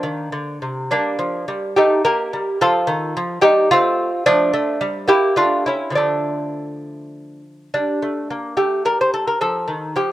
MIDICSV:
0, 0, Header, 1, 2, 480
1, 0, Start_track
1, 0, Tempo, 566038
1, 784, Time_signature, 3, 2, 24, 8
1, 2210, Tempo, 548446
1, 4610, Tempo, 593472
1, 7010, Tempo, 544959
1, 8600, End_track
2, 0, Start_track
2, 0, Title_t, "Lute"
2, 0, Program_c, 0, 24
2, 0, Note_on_c, 0, 58, 51
2, 0, Note_on_c, 0, 62, 65
2, 26, Note_on_c, 0, 51, 64
2, 268, Note_off_c, 0, 51, 0
2, 274, Note_on_c, 0, 50, 64
2, 502, Note_off_c, 0, 62, 0
2, 504, Note_off_c, 0, 58, 0
2, 517, Note_off_c, 0, 50, 0
2, 525, Note_on_c, 0, 48, 51
2, 764, Note_off_c, 0, 48, 0
2, 770, Note_on_c, 0, 55, 60
2, 775, Note_on_c, 0, 62, 87
2, 780, Note_on_c, 0, 58, 65
2, 1002, Note_off_c, 0, 55, 0
2, 1007, Note_on_c, 0, 53, 66
2, 1237, Note_off_c, 0, 53, 0
2, 1255, Note_on_c, 0, 55, 64
2, 1457, Note_off_c, 0, 58, 0
2, 1459, Note_off_c, 0, 62, 0
2, 1480, Note_off_c, 0, 55, 0
2, 1495, Note_on_c, 0, 67, 86
2, 1504, Note_on_c, 0, 57, 66
2, 1508, Note_on_c, 0, 63, 68
2, 1722, Note_off_c, 0, 63, 0
2, 1724, Note_off_c, 0, 67, 0
2, 1726, Note_off_c, 0, 57, 0
2, 1735, Note_on_c, 0, 58, 68
2, 1736, Note_on_c, 0, 70, 97
2, 1745, Note_on_c, 0, 67, 73
2, 1963, Note_off_c, 0, 58, 0
2, 1978, Note_on_c, 0, 55, 62
2, 2184, Note_off_c, 0, 67, 0
2, 2192, Note_off_c, 0, 70, 0
2, 2201, Note_off_c, 0, 55, 0
2, 2215, Note_on_c, 0, 53, 76
2, 2217, Note_on_c, 0, 69, 109
2, 2222, Note_on_c, 0, 65, 82
2, 2441, Note_off_c, 0, 53, 0
2, 2442, Note_on_c, 0, 51, 80
2, 2671, Note_off_c, 0, 51, 0
2, 2701, Note_on_c, 0, 53, 78
2, 2896, Note_off_c, 0, 65, 0
2, 2899, Note_off_c, 0, 69, 0
2, 2914, Note_off_c, 0, 53, 0
2, 2917, Note_on_c, 0, 55, 82
2, 2921, Note_on_c, 0, 67, 120
2, 2932, Note_on_c, 0, 63, 89
2, 3151, Note_off_c, 0, 55, 0
2, 3153, Note_off_c, 0, 63, 0
2, 3155, Note_off_c, 0, 67, 0
2, 3176, Note_on_c, 0, 65, 115
2, 3177, Note_on_c, 0, 57, 83
2, 3194, Note_on_c, 0, 60, 81
2, 3519, Note_off_c, 0, 57, 0
2, 3628, Note_off_c, 0, 60, 0
2, 3632, Note_off_c, 0, 65, 0
2, 3657, Note_on_c, 0, 53, 90
2, 3659, Note_on_c, 0, 62, 115
2, 3671, Note_on_c, 0, 57, 85
2, 3876, Note_off_c, 0, 53, 0
2, 3887, Note_off_c, 0, 57, 0
2, 3898, Note_on_c, 0, 57, 84
2, 4115, Note_off_c, 0, 57, 0
2, 4137, Note_on_c, 0, 55, 83
2, 4337, Note_off_c, 0, 62, 0
2, 4358, Note_off_c, 0, 55, 0
2, 4371, Note_on_c, 0, 58, 77
2, 4380, Note_on_c, 0, 67, 109
2, 4382, Note_on_c, 0, 64, 83
2, 4604, Note_off_c, 0, 58, 0
2, 4604, Note_off_c, 0, 64, 0
2, 4608, Note_off_c, 0, 67, 0
2, 4620, Note_on_c, 0, 57, 69
2, 4627, Note_on_c, 0, 65, 95
2, 4631, Note_on_c, 0, 62, 72
2, 4840, Note_off_c, 0, 62, 0
2, 4844, Note_off_c, 0, 65, 0
2, 4863, Note_on_c, 0, 64, 69
2, 4875, Note_on_c, 0, 61, 57
2, 4957, Note_off_c, 0, 57, 0
2, 5059, Note_on_c, 0, 50, 57
2, 5072, Note_on_c, 0, 53, 44
2, 5083, Note_off_c, 0, 61, 0
2, 5083, Note_off_c, 0, 64, 0
2, 5100, Note_on_c, 0, 62, 73
2, 5115, Note_on_c, 0, 57, 57
2, 6272, Note_off_c, 0, 62, 0
2, 6280, Note_off_c, 0, 57, 0
2, 6498, Note_off_c, 0, 50, 0
2, 6504, Note_off_c, 0, 53, 0
2, 6543, Note_on_c, 0, 62, 72
2, 6544, Note_on_c, 0, 55, 50
2, 6769, Note_off_c, 0, 55, 0
2, 6774, Note_on_c, 0, 57, 51
2, 6994, Note_off_c, 0, 57, 0
2, 7001, Note_on_c, 0, 58, 55
2, 7222, Note_off_c, 0, 62, 0
2, 7232, Note_on_c, 0, 57, 54
2, 7234, Note_on_c, 0, 67, 76
2, 7236, Note_off_c, 0, 58, 0
2, 7472, Note_off_c, 0, 57, 0
2, 7475, Note_off_c, 0, 67, 0
2, 7481, Note_on_c, 0, 55, 50
2, 7485, Note_on_c, 0, 70, 81
2, 7609, Note_off_c, 0, 70, 0
2, 7620, Note_on_c, 0, 72, 70
2, 7729, Note_off_c, 0, 72, 0
2, 7732, Note_on_c, 0, 69, 72
2, 7831, Note_off_c, 0, 55, 0
2, 7851, Note_off_c, 0, 69, 0
2, 7854, Note_on_c, 0, 70, 66
2, 7972, Note_off_c, 0, 70, 0
2, 7972, Note_on_c, 0, 53, 59
2, 7976, Note_on_c, 0, 69, 85
2, 8198, Note_off_c, 0, 53, 0
2, 8209, Note_on_c, 0, 51, 58
2, 8431, Note_off_c, 0, 69, 0
2, 8437, Note_off_c, 0, 51, 0
2, 8455, Note_on_c, 0, 53, 61
2, 8462, Note_on_c, 0, 67, 86
2, 8575, Note_off_c, 0, 67, 0
2, 8600, Note_off_c, 0, 53, 0
2, 8600, End_track
0, 0, End_of_file